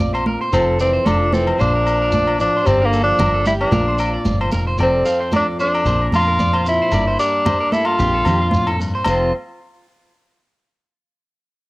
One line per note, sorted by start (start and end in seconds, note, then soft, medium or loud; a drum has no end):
0.00 0.36 A#1 loud
0.00 0.53 A#2 medium
0.00 0.50 C4 medium
0.00 0.52 F4 medium
0.00 0.13 D5 medium
0.00 high conga medium
0.14 0.26 C5 medium
0.14 low agogo medium
0.26 0.40 A#4 medium
0.26 high conga medium
0.41 0.53 C5 medium
0.52 0.97 F1 medium
0.52 1.59 F2 medium
0.52 0.79 F3 medium
0.52 0.78 C4 medium
0.52 1.57 A4 medium
0.52 0.79 A4 medium
0.52 muted conga soft
0.52 low agogo medium
0.52 shekere medium
0.79 1.08 E3 medium
0.79 1.57 A3 medium
0.79 1.08 C4 medium
0.79 0.93 D5 medium
0.79 shekere medium
0.93 1.06 C5 medium
1.05 1.51 F1 medium
1.05 1.56 F3 medium
1.05 1.33 F3 medium
1.05 1.35 D4 medium
1.05 1.31 A4 medium
1.05 muted conga soft
1.05 high conga medium
1.05 low agogo medium
1.05 shekere medium
1.32 1.61 E3 medium
1.32 1.62 C4 medium
1.32 1.47 A4 medium
1.32 high conga medium
1.32 shekere medium
1.47 muted clean electric guitar stroke medium
1.47 low agogo medium
1.58 2.49 A#1 loud
1.58 2.11 A#2 medium
1.58 2.39 F3 medium
1.58 2.40 D4 medium
1.58 2.65 F4 medium
1.58 1.73 C5 medium
1.58 muted conga soft
1.58 shekere medium
1.75 2.00 A#4 medium
1.86 2.63 C4 medium
1.86 muted conga soft
1.86 low agogo medium
1.86 shekere medium
2.02 2.13 A#4 medium
2.12 2.39 A#2 medium
2.12 2.28 D5 medium
2.12 high conga medium
2.12 shekere medium
2.27 2.54 D5 medium
2.27 low agogo medium
2.38 2.64 A2 medium
2.38 2.67 F3 medium
2.38 2.68 D4 medium
2.38 shekere medium
2.57 2.67 C5 medium
2.65 3.11 G1 loud
2.65 3.69 G2 medium
2.65 2.85 G3 medium
2.65 2.87 C4 loud
2.65 3.69 G4 medium
2.65 2.81 D5 medium
2.65 muted conga soft
2.65 low agogo medium
2.65 shekere medium
2.82 3.01 D3 medium
2.82 3.02 A#3 medium
2.82 2.93 A#4 medium
2.93 3.70 A#3 medium
2.93 3.19 A4 medium
2.93 shekere medium
3.03 3.44 F3 medium
3.03 3.44 D4 loud
3.19 3.64 G1 medium
3.19 3.69 G3 medium
3.19 3.33 A#4 medium
3.19 muted conga soft
3.19 high conga medium
3.19 low conga medium
3.19 low agogo medium
3.19 shekere medium
3.34 3.46 A4 medium
3.46 3.53 G3 medium
3.46 3.53 E4 loud
3.46 3.71 G4 medium
3.46 high conga medium
3.46 shekere medium
3.61 4.23 F3 medium
3.61 4.22 D4 loud
3.61 low agogo medium
3.71 4.17 A#1 loud
3.71 4.79 A#2 medium
3.71 4.79 F4 medium
3.71 3.86 A#4 medium
3.71 muted conga soft
3.71 high conga medium
3.71 shekere medium
3.88 3.99 C5 medium
3.98 4.76 C4 medium
3.98 4.13 D5 medium
3.98 muted conga soft
3.98 low agogo medium
3.98 shekere medium
4.14 4.39 D5 medium
4.25 4.50 G1 medium
4.25 4.76 F3 medium
4.25 high conga medium
4.25 shekere medium
4.41 4.52 C5 medium
4.41 low agogo medium
4.51 4.77 F1 medium
4.51 4.66 A#4 medium
4.51 high conga medium
4.51 shekere medium
4.67 4.79 C5 medium
4.78 5.02 F1 medium
4.78 5.85 F2 medium
4.78 5.58 A3 medium
4.78 5.84 C4 medium
4.78 5.04 A4 medium
4.78 5.05 D5 medium
4.78 muted conga soft
4.78 low agogo medium
4.78 shekere medium
4.82 5.30 C4 medium
5.05 5.83 A4 medium
5.05 5.20 F5 medium
5.05 shekere medium
5.20 5.32 C5 medium
5.31 5.82 F3 medium
5.31 5.59 D5 medium
5.31 high conga medium
5.31 low agogo medium
5.31 shekere medium
5.36 5.47 D4 medium
5.59 5.83 A3 medium
5.59 6.10 D4 loud
5.59 5.73 C5 medium
5.59 shekere medium
5.74 5.86 D5 medium
5.74 low agogo medium
5.85 6.08 A#1 medium
5.85 6.92 A#2 medium
5.85 6.64 C4 medium
5.85 6.11 D4 medium
5.85 6.00 C5 medium
5.85 muted conga soft
5.85 shekere medium
6.01 6.26 A#4 medium
6.12 6.79 F2 medium
6.12 6.90 D4 medium
6.12 6.64 F4 loud
6.12 muted conga soft
6.12 high conga medium
6.12 low agogo medium
6.12 shekere medium
6.28 6.39 A#4 medium
6.39 6.90 F3 medium
6.39 6.53 D5 medium
6.39 high conga medium
6.39 shekere medium
6.53 6.79 C5 medium
6.53 low agogo medium
6.65 6.89 C4 medium
6.65 7.17 E4 loud
6.65 muted conga soft
6.65 shekere medium
6.82 6.93 C5 medium
6.91 7.15 G1 medium
6.91 7.95 G2 medium
6.91 7.71 A#3 medium
6.91 7.96 D4 medium
6.91 7.07 D5 medium
6.91 muted conga soft
6.91 low agogo medium
6.91 shekere medium
7.07 7.19 C5 medium
7.19 7.74 D4 loud
7.19 7.96 G4 medium
7.19 7.45 A#4 medium
7.19 shekere medium
7.45 7.96 G3 medium
7.45 7.60 C5 medium
7.45 high conga medium
7.45 low conga medium
7.45 low agogo medium
7.45 shekere medium
7.60 7.72 A#4 medium
7.72 7.96 A#3 medium
7.72 7.88 E4 medium
7.72 7.98 A4 medium
7.72 high conga medium
7.72 shekere medium
7.85 8.79 F4 loud
7.85 low agogo medium
7.98 8.22 A#1 loud
7.98 9.06 A#2 medium
7.98 9.03 C4 medium
7.98 8.25 D4 medium
7.98 8.13 G4 medium
7.98 muted conga soft
7.98 shekere medium
8.14 8.26 A4 medium
8.25 8.93 F2 medium
8.25 9.03 D4 medium
8.25 8.40 G4 medium
8.25 muted conga soft
8.25 low conga medium
8.25 low agogo medium
8.25 shekere medium
8.41 8.66 F4 medium
8.51 8.79 A2 medium
8.51 high conga medium
8.51 shekere medium
8.67 8.79 A4 medium
8.67 low agogo medium
8.79 9.05 G2 medium
8.79 muted conga soft
8.79 shekere medium
8.95 9.06 C5 medium
9.05 9.31 F1 medium
9.05 9.30 F2 medium
9.05 9.30 F3 medium
9.05 9.31 A3 medium
9.05 9.32 C4 medium
9.05 9.31 C4 medium
9.05 9.31 F4 medium
9.05 muted conga medium
9.05 low agogo loud
9.05 shekere medium
9.09 9.32 A4 medium